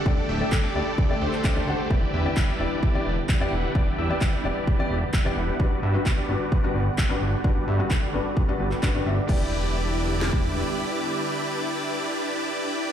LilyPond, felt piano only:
\new Staff \with { instrumentName = "Felt piano" } { \time 4/4 \key e \minor \tempo 4 = 130 <d a d' g' d''>8. <d a d' g' d''>16 r8 <d a d' g' d''>8. <d a d' g' d''>16 r8 <d a d' g' d''>16 <d a d' g' d''>16 <a d' g' fis''>16 r16 | <e b e' g' d''>8. <e b e' g' d''>16 r8 <e b e' g' d''>8. <e b e' g' d''>16 r8. <e b e' g' d''>16 r8 | <e b e' g' d''>8. <e b e' g' d''>16 r8 <e b e' g' d''>8. <e b e' g' d''>16 r8. <e b e' g' d''>16 r8 | <g, g d' fis' b'>8. <g, g d' fis' b'>16 r8 <g, g d' fis' b'>8. <g, g d' fis' b'>16 r8. <g, g d' fis' b'>16 r8 |
<g, g d' fis' b'>8. <g, g d' fis' b'>16 r8 <g, g d' fis' b'>8. <g, g d' fis' b'>16 r8 <g, g d' fis' b'>16 <g, g d' fis' b'>16 <g d' fis' e''>16 r16 | <b e' g' d''>1~ | <b e' g' d''>1 | }